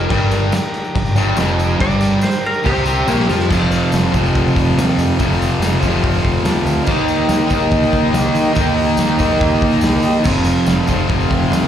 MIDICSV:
0, 0, Header, 1, 6, 480
1, 0, Start_track
1, 0, Tempo, 422833
1, 117, Time_signature, 4, 2, 24, 8
1, 13256, End_track
2, 0, Start_track
2, 0, Title_t, "Electric slide guitar"
2, 0, Program_c, 0, 29
2, 0, Note_on_c, 0, 70, 108
2, 803, Note_off_c, 0, 70, 0
2, 2057, Note_on_c, 0, 74, 120
2, 2520, Note_off_c, 0, 74, 0
2, 2529, Note_on_c, 0, 72, 98
2, 2763, Note_off_c, 0, 72, 0
2, 2798, Note_on_c, 0, 70, 96
2, 3018, Note_off_c, 0, 70, 0
2, 3022, Note_on_c, 0, 67, 116
2, 3248, Note_off_c, 0, 67, 0
2, 3261, Note_on_c, 0, 67, 109
2, 3956, Note_off_c, 0, 67, 0
2, 13256, End_track
3, 0, Start_track
3, 0, Title_t, "Transistor combo organ"
3, 0, Program_c, 1, 18
3, 120, Note_on_c, 1, 62, 82
3, 130, Note_on_c, 1, 67, 75
3, 131, Note_on_c, 1, 70, 91
3, 3929, Note_off_c, 1, 62, 0
3, 3934, Note_off_c, 1, 67, 0
3, 3934, Note_off_c, 1, 70, 0
3, 3977, Note_on_c, 1, 60, 79
3, 3978, Note_on_c, 1, 69, 88
3, 3985, Note_on_c, 1, 65, 76
3, 7063, Note_on_c, 1, 84, 78
3, 7298, Note_off_c, 1, 84, 0
3, 7315, Note_on_c, 1, 81, 82
3, 7543, Note_on_c, 1, 77, 72
3, 7544, Note_off_c, 1, 81, 0
3, 7764, Note_off_c, 1, 60, 0
3, 7764, Note_off_c, 1, 69, 0
3, 7768, Note_off_c, 1, 65, 0
3, 7777, Note_off_c, 1, 77, 0
3, 7823, Note_on_c, 1, 67, 73
3, 7830, Note_on_c, 1, 63, 83
3, 7832, Note_on_c, 1, 70, 91
3, 11599, Note_off_c, 1, 67, 0
3, 11602, Note_off_c, 1, 63, 0
3, 11603, Note_off_c, 1, 70, 0
3, 11657, Note_on_c, 1, 69, 74
3, 11659, Note_on_c, 1, 72, 90
3, 11661, Note_on_c, 1, 65, 79
3, 13256, Note_off_c, 1, 65, 0
3, 13256, Note_off_c, 1, 69, 0
3, 13256, Note_off_c, 1, 72, 0
3, 13256, End_track
4, 0, Start_track
4, 0, Title_t, "Distorted electric guitar"
4, 0, Program_c, 2, 30
4, 111, Note_on_c, 2, 43, 94
4, 125, Note_on_c, 2, 55, 101
4, 590, Note_off_c, 2, 43, 0
4, 597, Note_off_c, 2, 55, 0
4, 1077, Note_on_c, 2, 43, 74
4, 1273, Note_off_c, 2, 43, 0
4, 1316, Note_on_c, 2, 43, 91
4, 1331, Note_on_c, 2, 55, 102
4, 1554, Note_off_c, 2, 43, 0
4, 1561, Note_off_c, 2, 55, 0
4, 1562, Note_on_c, 2, 41, 105
4, 1583, Note_on_c, 2, 53, 101
4, 2031, Note_off_c, 2, 41, 0
4, 2036, Note_on_c, 2, 43, 96
4, 2043, Note_off_c, 2, 53, 0
4, 2048, Note_on_c, 2, 55, 109
4, 2516, Note_off_c, 2, 43, 0
4, 2522, Note_off_c, 2, 55, 0
4, 2992, Note_on_c, 2, 48, 94
4, 3009, Note_on_c, 2, 60, 106
4, 3475, Note_off_c, 2, 48, 0
4, 3484, Note_off_c, 2, 60, 0
4, 3486, Note_on_c, 2, 46, 99
4, 3499, Note_on_c, 2, 58, 116
4, 3716, Note_off_c, 2, 46, 0
4, 3721, Note_on_c, 2, 53, 92
4, 3729, Note_off_c, 2, 58, 0
4, 3734, Note_on_c, 2, 65, 113
4, 3960, Note_off_c, 2, 53, 0
4, 3962, Note_on_c, 2, 41, 87
4, 3967, Note_off_c, 2, 65, 0
4, 4003, Note_on_c, 2, 48, 90
4, 4020, Note_on_c, 2, 53, 97
4, 4669, Note_off_c, 2, 53, 0
4, 4674, Note_on_c, 2, 53, 90
4, 4691, Note_off_c, 2, 48, 0
4, 4705, Note_on_c, 2, 48, 83
4, 4737, Note_off_c, 2, 41, 0
4, 4742, Note_on_c, 2, 41, 64
4, 5857, Note_off_c, 2, 41, 0
4, 5868, Note_off_c, 2, 53, 0
4, 5870, Note_on_c, 2, 41, 83
4, 5884, Note_off_c, 2, 48, 0
4, 5904, Note_on_c, 2, 48, 95
4, 5934, Note_on_c, 2, 53, 90
4, 6578, Note_off_c, 2, 53, 0
4, 6585, Note_off_c, 2, 41, 0
4, 6592, Note_on_c, 2, 53, 83
4, 6602, Note_off_c, 2, 48, 0
4, 6622, Note_on_c, 2, 48, 81
4, 6655, Note_on_c, 2, 41, 76
4, 7770, Note_off_c, 2, 48, 0
4, 7774, Note_on_c, 2, 51, 86
4, 7783, Note_off_c, 2, 53, 0
4, 7810, Note_on_c, 2, 58, 91
4, 7815, Note_off_c, 2, 41, 0
4, 7846, Note_on_c, 2, 63, 93
4, 8483, Note_off_c, 2, 63, 0
4, 8488, Note_on_c, 2, 63, 91
4, 8517, Note_off_c, 2, 58, 0
4, 8521, Note_on_c, 2, 58, 86
4, 8546, Note_off_c, 2, 51, 0
4, 8551, Note_on_c, 2, 51, 74
4, 9672, Note_off_c, 2, 51, 0
4, 9685, Note_on_c, 2, 51, 96
4, 9688, Note_off_c, 2, 63, 0
4, 9705, Note_off_c, 2, 58, 0
4, 9730, Note_on_c, 2, 58, 102
4, 9752, Note_on_c, 2, 63, 99
4, 10395, Note_off_c, 2, 63, 0
4, 10407, Note_off_c, 2, 51, 0
4, 10409, Note_on_c, 2, 63, 80
4, 10429, Note_off_c, 2, 58, 0
4, 10451, Note_on_c, 2, 58, 78
4, 10476, Note_on_c, 2, 51, 67
4, 11607, Note_off_c, 2, 63, 0
4, 11613, Note_on_c, 2, 41, 83
4, 11628, Note_off_c, 2, 58, 0
4, 11640, Note_off_c, 2, 51, 0
4, 11651, Note_on_c, 2, 48, 104
4, 11672, Note_on_c, 2, 53, 94
4, 12338, Note_off_c, 2, 53, 0
4, 12343, Note_on_c, 2, 53, 90
4, 12347, Note_off_c, 2, 48, 0
4, 12374, Note_on_c, 2, 48, 84
4, 12398, Note_off_c, 2, 41, 0
4, 12402, Note_on_c, 2, 41, 73
4, 13256, Note_off_c, 2, 41, 0
4, 13256, Note_off_c, 2, 48, 0
4, 13256, Note_off_c, 2, 53, 0
4, 13256, End_track
5, 0, Start_track
5, 0, Title_t, "Fingered electric bass"
5, 0, Program_c, 3, 33
5, 121, Note_on_c, 3, 31, 90
5, 568, Note_off_c, 3, 31, 0
5, 1082, Note_on_c, 3, 31, 86
5, 1299, Note_off_c, 3, 31, 0
5, 1305, Note_on_c, 3, 31, 101
5, 1538, Note_off_c, 3, 31, 0
5, 1552, Note_on_c, 3, 29, 101
5, 2007, Note_off_c, 3, 29, 0
5, 2040, Note_on_c, 3, 31, 88
5, 2491, Note_off_c, 3, 31, 0
5, 3016, Note_on_c, 3, 36, 98
5, 3461, Note_off_c, 3, 36, 0
5, 3492, Note_on_c, 3, 34, 102
5, 3716, Note_off_c, 3, 34, 0
5, 3745, Note_on_c, 3, 41, 97
5, 3963, Note_off_c, 3, 41, 0
5, 3979, Note_on_c, 3, 29, 86
5, 4288, Note_off_c, 3, 29, 0
5, 4463, Note_on_c, 3, 29, 99
5, 4616, Note_off_c, 3, 29, 0
5, 4700, Note_on_c, 3, 29, 86
5, 4853, Note_off_c, 3, 29, 0
5, 4944, Note_on_c, 3, 29, 95
5, 5096, Note_off_c, 3, 29, 0
5, 5179, Note_on_c, 3, 29, 93
5, 5332, Note_off_c, 3, 29, 0
5, 5411, Note_on_c, 3, 39, 94
5, 5567, Note_off_c, 3, 39, 0
5, 5649, Note_on_c, 3, 41, 91
5, 5806, Note_off_c, 3, 41, 0
5, 5897, Note_on_c, 3, 29, 95
5, 6206, Note_off_c, 3, 29, 0
5, 6351, Note_on_c, 3, 29, 94
5, 6513, Note_off_c, 3, 29, 0
5, 6611, Note_on_c, 3, 29, 85
5, 6766, Note_off_c, 3, 29, 0
5, 6852, Note_on_c, 3, 29, 97
5, 7007, Note_off_c, 3, 29, 0
5, 7096, Note_on_c, 3, 29, 90
5, 7249, Note_off_c, 3, 29, 0
5, 7309, Note_on_c, 3, 39, 90
5, 7470, Note_off_c, 3, 39, 0
5, 7550, Note_on_c, 3, 38, 95
5, 7711, Note_off_c, 3, 38, 0
5, 7801, Note_on_c, 3, 39, 96
5, 8113, Note_off_c, 3, 39, 0
5, 8276, Note_on_c, 3, 39, 99
5, 8434, Note_off_c, 3, 39, 0
5, 8521, Note_on_c, 3, 39, 92
5, 8677, Note_off_c, 3, 39, 0
5, 8752, Note_on_c, 3, 39, 97
5, 8911, Note_off_c, 3, 39, 0
5, 9000, Note_on_c, 3, 39, 97
5, 9156, Note_off_c, 3, 39, 0
5, 9236, Note_on_c, 3, 36, 97
5, 9393, Note_off_c, 3, 36, 0
5, 9476, Note_on_c, 3, 51, 94
5, 9633, Note_off_c, 3, 51, 0
5, 9728, Note_on_c, 3, 39, 94
5, 10036, Note_off_c, 3, 39, 0
5, 10190, Note_on_c, 3, 39, 94
5, 10348, Note_off_c, 3, 39, 0
5, 10439, Note_on_c, 3, 39, 91
5, 10594, Note_off_c, 3, 39, 0
5, 10678, Note_on_c, 3, 39, 91
5, 10833, Note_off_c, 3, 39, 0
5, 10921, Note_on_c, 3, 39, 94
5, 11075, Note_off_c, 3, 39, 0
5, 11158, Note_on_c, 3, 36, 92
5, 11313, Note_off_c, 3, 36, 0
5, 11395, Note_on_c, 3, 51, 90
5, 11551, Note_off_c, 3, 51, 0
5, 11640, Note_on_c, 3, 29, 91
5, 11949, Note_off_c, 3, 29, 0
5, 12111, Note_on_c, 3, 29, 97
5, 12268, Note_off_c, 3, 29, 0
5, 12352, Note_on_c, 3, 29, 86
5, 12508, Note_off_c, 3, 29, 0
5, 12594, Note_on_c, 3, 29, 93
5, 12749, Note_off_c, 3, 29, 0
5, 12840, Note_on_c, 3, 29, 99
5, 12993, Note_off_c, 3, 29, 0
5, 13071, Note_on_c, 3, 39, 96
5, 13227, Note_off_c, 3, 39, 0
5, 13256, End_track
6, 0, Start_track
6, 0, Title_t, "Drums"
6, 115, Note_on_c, 9, 54, 26
6, 117, Note_on_c, 9, 49, 80
6, 118, Note_on_c, 9, 36, 120
6, 228, Note_off_c, 9, 54, 0
6, 231, Note_off_c, 9, 49, 0
6, 232, Note_off_c, 9, 36, 0
6, 356, Note_on_c, 9, 54, 75
6, 357, Note_on_c, 9, 49, 61
6, 363, Note_on_c, 9, 38, 37
6, 469, Note_off_c, 9, 54, 0
6, 471, Note_off_c, 9, 49, 0
6, 476, Note_off_c, 9, 38, 0
6, 594, Note_on_c, 9, 54, 88
6, 595, Note_on_c, 9, 49, 67
6, 601, Note_on_c, 9, 38, 106
6, 707, Note_off_c, 9, 54, 0
6, 709, Note_off_c, 9, 49, 0
6, 715, Note_off_c, 9, 38, 0
6, 838, Note_on_c, 9, 49, 58
6, 847, Note_on_c, 9, 54, 28
6, 952, Note_off_c, 9, 49, 0
6, 959, Note_off_c, 9, 54, 0
6, 959, Note_on_c, 9, 54, 26
6, 1073, Note_off_c, 9, 54, 0
6, 1084, Note_on_c, 9, 36, 114
6, 1090, Note_on_c, 9, 49, 78
6, 1198, Note_off_c, 9, 36, 0
6, 1200, Note_on_c, 9, 54, 27
6, 1204, Note_off_c, 9, 49, 0
6, 1314, Note_off_c, 9, 54, 0
6, 1317, Note_on_c, 9, 54, 70
6, 1333, Note_on_c, 9, 49, 60
6, 1431, Note_off_c, 9, 54, 0
6, 1446, Note_off_c, 9, 49, 0
6, 1549, Note_on_c, 9, 54, 102
6, 1564, Note_on_c, 9, 49, 72
6, 1569, Note_on_c, 9, 38, 111
6, 1663, Note_off_c, 9, 54, 0
6, 1677, Note_off_c, 9, 49, 0
6, 1683, Note_off_c, 9, 38, 0
6, 1684, Note_on_c, 9, 54, 29
6, 1798, Note_off_c, 9, 54, 0
6, 1806, Note_on_c, 9, 49, 58
6, 1811, Note_on_c, 9, 54, 75
6, 1920, Note_off_c, 9, 49, 0
6, 1925, Note_off_c, 9, 54, 0
6, 1931, Note_on_c, 9, 54, 29
6, 2045, Note_off_c, 9, 54, 0
6, 2048, Note_on_c, 9, 54, 28
6, 2049, Note_on_c, 9, 36, 115
6, 2050, Note_on_c, 9, 49, 79
6, 2161, Note_off_c, 9, 54, 0
6, 2162, Note_off_c, 9, 36, 0
6, 2163, Note_off_c, 9, 49, 0
6, 2166, Note_on_c, 9, 54, 29
6, 2277, Note_off_c, 9, 54, 0
6, 2277, Note_on_c, 9, 54, 77
6, 2297, Note_on_c, 9, 49, 65
6, 2302, Note_on_c, 9, 38, 35
6, 2391, Note_off_c, 9, 54, 0
6, 2410, Note_off_c, 9, 49, 0
6, 2416, Note_off_c, 9, 38, 0
6, 2513, Note_on_c, 9, 54, 98
6, 2541, Note_on_c, 9, 49, 78
6, 2546, Note_on_c, 9, 38, 106
6, 2624, Note_off_c, 9, 54, 0
6, 2624, Note_on_c, 9, 54, 73
6, 2654, Note_off_c, 9, 49, 0
6, 2660, Note_off_c, 9, 38, 0
6, 2738, Note_off_c, 9, 54, 0
6, 2755, Note_on_c, 9, 54, 29
6, 2794, Note_on_c, 9, 49, 65
6, 2869, Note_off_c, 9, 54, 0
6, 2884, Note_on_c, 9, 54, 30
6, 2908, Note_off_c, 9, 49, 0
6, 2985, Note_off_c, 9, 54, 0
6, 2985, Note_on_c, 9, 54, 29
6, 3018, Note_on_c, 9, 36, 110
6, 3028, Note_on_c, 9, 49, 89
6, 3099, Note_off_c, 9, 54, 0
6, 3124, Note_on_c, 9, 54, 30
6, 3132, Note_off_c, 9, 36, 0
6, 3142, Note_off_c, 9, 49, 0
6, 3237, Note_off_c, 9, 54, 0
6, 3242, Note_on_c, 9, 54, 76
6, 3265, Note_on_c, 9, 49, 63
6, 3355, Note_off_c, 9, 54, 0
6, 3379, Note_off_c, 9, 49, 0
6, 3492, Note_on_c, 9, 54, 104
6, 3514, Note_on_c, 9, 38, 62
6, 3606, Note_off_c, 9, 54, 0
6, 3619, Note_on_c, 9, 54, 30
6, 3627, Note_off_c, 9, 38, 0
6, 3629, Note_on_c, 9, 38, 73
6, 3733, Note_off_c, 9, 54, 0
6, 3739, Note_on_c, 9, 54, 77
6, 3740, Note_off_c, 9, 38, 0
6, 3740, Note_on_c, 9, 38, 94
6, 3852, Note_off_c, 9, 54, 0
6, 3854, Note_off_c, 9, 38, 0
6, 3857, Note_on_c, 9, 38, 98
6, 3970, Note_off_c, 9, 38, 0
6, 3976, Note_on_c, 9, 57, 120
6, 3980, Note_on_c, 9, 36, 112
6, 3999, Note_on_c, 9, 54, 74
6, 4090, Note_off_c, 9, 57, 0
6, 4093, Note_off_c, 9, 36, 0
6, 4112, Note_off_c, 9, 54, 0
6, 4218, Note_on_c, 9, 54, 77
6, 4221, Note_on_c, 9, 46, 68
6, 4331, Note_off_c, 9, 54, 0
6, 4335, Note_off_c, 9, 46, 0
6, 4449, Note_on_c, 9, 54, 102
6, 4466, Note_on_c, 9, 46, 74
6, 4471, Note_on_c, 9, 38, 104
6, 4562, Note_off_c, 9, 54, 0
6, 4579, Note_off_c, 9, 46, 0
6, 4585, Note_off_c, 9, 38, 0
6, 4700, Note_on_c, 9, 54, 80
6, 4703, Note_on_c, 9, 36, 82
6, 4704, Note_on_c, 9, 46, 59
6, 4813, Note_off_c, 9, 54, 0
6, 4816, Note_off_c, 9, 36, 0
6, 4817, Note_off_c, 9, 46, 0
6, 4832, Note_on_c, 9, 54, 30
6, 4943, Note_on_c, 9, 36, 119
6, 4945, Note_on_c, 9, 46, 79
6, 4946, Note_off_c, 9, 54, 0
6, 4952, Note_on_c, 9, 54, 33
6, 5056, Note_off_c, 9, 36, 0
6, 5058, Note_off_c, 9, 46, 0
6, 5065, Note_off_c, 9, 54, 0
6, 5075, Note_on_c, 9, 54, 30
6, 5181, Note_on_c, 9, 36, 93
6, 5181, Note_on_c, 9, 46, 65
6, 5188, Note_off_c, 9, 54, 0
6, 5196, Note_on_c, 9, 54, 29
6, 5294, Note_off_c, 9, 36, 0
6, 5295, Note_off_c, 9, 46, 0
6, 5309, Note_off_c, 9, 54, 0
6, 5427, Note_on_c, 9, 46, 84
6, 5433, Note_on_c, 9, 38, 108
6, 5434, Note_on_c, 9, 54, 110
6, 5541, Note_off_c, 9, 46, 0
6, 5546, Note_off_c, 9, 38, 0
6, 5547, Note_off_c, 9, 54, 0
6, 5554, Note_on_c, 9, 38, 34
6, 5662, Note_on_c, 9, 54, 80
6, 5667, Note_off_c, 9, 38, 0
6, 5667, Note_on_c, 9, 46, 65
6, 5775, Note_off_c, 9, 54, 0
6, 5780, Note_off_c, 9, 46, 0
6, 5896, Note_on_c, 9, 54, 81
6, 5902, Note_on_c, 9, 36, 120
6, 5904, Note_on_c, 9, 46, 87
6, 6009, Note_off_c, 9, 54, 0
6, 6016, Note_off_c, 9, 36, 0
6, 6017, Note_off_c, 9, 46, 0
6, 6035, Note_on_c, 9, 54, 29
6, 6143, Note_on_c, 9, 46, 74
6, 6149, Note_off_c, 9, 54, 0
6, 6152, Note_on_c, 9, 54, 86
6, 6256, Note_off_c, 9, 46, 0
6, 6265, Note_off_c, 9, 54, 0
6, 6382, Note_on_c, 9, 46, 87
6, 6382, Note_on_c, 9, 54, 100
6, 6388, Note_on_c, 9, 38, 105
6, 6495, Note_off_c, 9, 54, 0
6, 6496, Note_off_c, 9, 46, 0
6, 6500, Note_on_c, 9, 54, 29
6, 6501, Note_off_c, 9, 38, 0
6, 6613, Note_off_c, 9, 54, 0
6, 6614, Note_on_c, 9, 54, 79
6, 6616, Note_on_c, 9, 36, 80
6, 6619, Note_on_c, 9, 46, 69
6, 6728, Note_off_c, 9, 54, 0
6, 6729, Note_off_c, 9, 36, 0
6, 6733, Note_off_c, 9, 46, 0
6, 6851, Note_on_c, 9, 54, 30
6, 6854, Note_on_c, 9, 36, 117
6, 6856, Note_on_c, 9, 46, 90
6, 6965, Note_off_c, 9, 54, 0
6, 6968, Note_off_c, 9, 36, 0
6, 6970, Note_off_c, 9, 46, 0
6, 6977, Note_on_c, 9, 54, 25
6, 7088, Note_on_c, 9, 46, 71
6, 7090, Note_off_c, 9, 54, 0
6, 7091, Note_on_c, 9, 36, 92
6, 7103, Note_on_c, 9, 54, 25
6, 7201, Note_off_c, 9, 46, 0
6, 7205, Note_off_c, 9, 36, 0
6, 7216, Note_off_c, 9, 54, 0
6, 7325, Note_on_c, 9, 54, 94
6, 7327, Note_on_c, 9, 46, 88
6, 7332, Note_on_c, 9, 38, 113
6, 7438, Note_off_c, 9, 54, 0
6, 7440, Note_off_c, 9, 46, 0
6, 7446, Note_off_c, 9, 38, 0
6, 7449, Note_on_c, 9, 54, 26
6, 7562, Note_off_c, 9, 54, 0
6, 7564, Note_on_c, 9, 54, 62
6, 7568, Note_on_c, 9, 46, 62
6, 7677, Note_off_c, 9, 54, 0
6, 7681, Note_off_c, 9, 46, 0
6, 7792, Note_on_c, 9, 54, 64
6, 7797, Note_on_c, 9, 57, 102
6, 7805, Note_on_c, 9, 36, 120
6, 7905, Note_off_c, 9, 54, 0
6, 7910, Note_off_c, 9, 57, 0
6, 7918, Note_on_c, 9, 54, 26
6, 7919, Note_off_c, 9, 36, 0
6, 8032, Note_off_c, 9, 54, 0
6, 8037, Note_on_c, 9, 46, 67
6, 8041, Note_on_c, 9, 54, 66
6, 8151, Note_off_c, 9, 46, 0
6, 8154, Note_off_c, 9, 54, 0
6, 8270, Note_on_c, 9, 46, 77
6, 8276, Note_on_c, 9, 38, 109
6, 8278, Note_on_c, 9, 54, 90
6, 8384, Note_off_c, 9, 46, 0
6, 8389, Note_off_c, 9, 38, 0
6, 8391, Note_off_c, 9, 54, 0
6, 8406, Note_on_c, 9, 54, 25
6, 8513, Note_on_c, 9, 46, 62
6, 8516, Note_off_c, 9, 54, 0
6, 8516, Note_on_c, 9, 54, 70
6, 8523, Note_on_c, 9, 36, 85
6, 8626, Note_off_c, 9, 46, 0
6, 8628, Note_off_c, 9, 54, 0
6, 8628, Note_on_c, 9, 54, 26
6, 8636, Note_off_c, 9, 36, 0
6, 8742, Note_off_c, 9, 54, 0
6, 8751, Note_on_c, 9, 46, 84
6, 8760, Note_on_c, 9, 54, 26
6, 8762, Note_on_c, 9, 36, 117
6, 8864, Note_off_c, 9, 46, 0
6, 8874, Note_off_c, 9, 54, 0
6, 8875, Note_off_c, 9, 36, 0
6, 8890, Note_on_c, 9, 54, 27
6, 8994, Note_on_c, 9, 46, 60
6, 9003, Note_on_c, 9, 36, 90
6, 9004, Note_off_c, 9, 54, 0
6, 9011, Note_on_c, 9, 54, 27
6, 9107, Note_off_c, 9, 46, 0
6, 9117, Note_off_c, 9, 36, 0
6, 9124, Note_off_c, 9, 54, 0
6, 9238, Note_on_c, 9, 46, 80
6, 9244, Note_on_c, 9, 38, 105
6, 9247, Note_on_c, 9, 54, 102
6, 9352, Note_off_c, 9, 46, 0
6, 9357, Note_off_c, 9, 38, 0
6, 9360, Note_off_c, 9, 54, 0
6, 9371, Note_on_c, 9, 38, 35
6, 9474, Note_on_c, 9, 46, 67
6, 9484, Note_off_c, 9, 38, 0
6, 9484, Note_on_c, 9, 54, 74
6, 9587, Note_off_c, 9, 46, 0
6, 9597, Note_off_c, 9, 54, 0
6, 9709, Note_on_c, 9, 54, 77
6, 9722, Note_on_c, 9, 46, 86
6, 9724, Note_on_c, 9, 36, 121
6, 9823, Note_off_c, 9, 54, 0
6, 9833, Note_on_c, 9, 54, 27
6, 9835, Note_off_c, 9, 46, 0
6, 9837, Note_off_c, 9, 36, 0
6, 9947, Note_off_c, 9, 54, 0
6, 9964, Note_on_c, 9, 46, 69
6, 10077, Note_on_c, 9, 54, 25
6, 10078, Note_off_c, 9, 46, 0
6, 10184, Note_off_c, 9, 54, 0
6, 10184, Note_on_c, 9, 54, 98
6, 10199, Note_on_c, 9, 46, 84
6, 10204, Note_on_c, 9, 38, 105
6, 10297, Note_off_c, 9, 54, 0
6, 10312, Note_off_c, 9, 46, 0
6, 10318, Note_off_c, 9, 38, 0
6, 10318, Note_on_c, 9, 54, 29
6, 10431, Note_off_c, 9, 54, 0
6, 10431, Note_on_c, 9, 54, 77
6, 10444, Note_on_c, 9, 36, 82
6, 10445, Note_on_c, 9, 46, 66
6, 10544, Note_off_c, 9, 54, 0
6, 10549, Note_on_c, 9, 54, 28
6, 10557, Note_off_c, 9, 36, 0
6, 10558, Note_off_c, 9, 46, 0
6, 10663, Note_off_c, 9, 54, 0
6, 10679, Note_on_c, 9, 54, 30
6, 10680, Note_on_c, 9, 46, 88
6, 10684, Note_on_c, 9, 36, 121
6, 10793, Note_off_c, 9, 54, 0
6, 10794, Note_off_c, 9, 46, 0
6, 10796, Note_on_c, 9, 54, 27
6, 10797, Note_off_c, 9, 36, 0
6, 10906, Note_off_c, 9, 54, 0
6, 10906, Note_on_c, 9, 54, 30
6, 10923, Note_on_c, 9, 36, 90
6, 10923, Note_on_c, 9, 46, 72
6, 11020, Note_off_c, 9, 54, 0
6, 11023, Note_on_c, 9, 54, 29
6, 11036, Note_off_c, 9, 36, 0
6, 11037, Note_off_c, 9, 46, 0
6, 11136, Note_off_c, 9, 54, 0
6, 11138, Note_on_c, 9, 54, 106
6, 11164, Note_on_c, 9, 46, 88
6, 11170, Note_on_c, 9, 38, 107
6, 11251, Note_off_c, 9, 54, 0
6, 11260, Note_on_c, 9, 54, 31
6, 11278, Note_off_c, 9, 46, 0
6, 11284, Note_off_c, 9, 38, 0
6, 11374, Note_off_c, 9, 54, 0
6, 11382, Note_on_c, 9, 54, 73
6, 11398, Note_on_c, 9, 46, 69
6, 11496, Note_off_c, 9, 54, 0
6, 11499, Note_on_c, 9, 54, 29
6, 11511, Note_off_c, 9, 46, 0
6, 11612, Note_off_c, 9, 54, 0
6, 11624, Note_on_c, 9, 54, 80
6, 11637, Note_on_c, 9, 49, 114
6, 11642, Note_on_c, 9, 36, 117
6, 11737, Note_off_c, 9, 54, 0
6, 11750, Note_off_c, 9, 49, 0
6, 11755, Note_off_c, 9, 36, 0
6, 11859, Note_on_c, 9, 54, 74
6, 11882, Note_on_c, 9, 46, 68
6, 11973, Note_off_c, 9, 54, 0
6, 11996, Note_off_c, 9, 46, 0
6, 12107, Note_on_c, 9, 54, 95
6, 12116, Note_on_c, 9, 46, 78
6, 12122, Note_on_c, 9, 38, 104
6, 12220, Note_off_c, 9, 54, 0
6, 12229, Note_off_c, 9, 46, 0
6, 12235, Note_off_c, 9, 38, 0
6, 12343, Note_on_c, 9, 54, 77
6, 12356, Note_on_c, 9, 46, 61
6, 12359, Note_on_c, 9, 36, 83
6, 12456, Note_off_c, 9, 54, 0
6, 12469, Note_off_c, 9, 46, 0
6, 12472, Note_on_c, 9, 54, 27
6, 12473, Note_off_c, 9, 36, 0
6, 12585, Note_on_c, 9, 46, 85
6, 12586, Note_off_c, 9, 54, 0
6, 12597, Note_on_c, 9, 36, 123
6, 12597, Note_on_c, 9, 54, 28
6, 12699, Note_off_c, 9, 46, 0
6, 12710, Note_off_c, 9, 36, 0
6, 12710, Note_off_c, 9, 54, 0
6, 12720, Note_on_c, 9, 54, 30
6, 12833, Note_off_c, 9, 54, 0
6, 12833, Note_on_c, 9, 46, 60
6, 12837, Note_on_c, 9, 36, 93
6, 12850, Note_on_c, 9, 54, 26
6, 12946, Note_off_c, 9, 46, 0
6, 12950, Note_off_c, 9, 36, 0
6, 12964, Note_off_c, 9, 54, 0
6, 13071, Note_on_c, 9, 46, 81
6, 13076, Note_on_c, 9, 38, 108
6, 13089, Note_on_c, 9, 54, 104
6, 13184, Note_off_c, 9, 46, 0
6, 13190, Note_off_c, 9, 38, 0
6, 13203, Note_off_c, 9, 54, 0
6, 13256, End_track
0, 0, End_of_file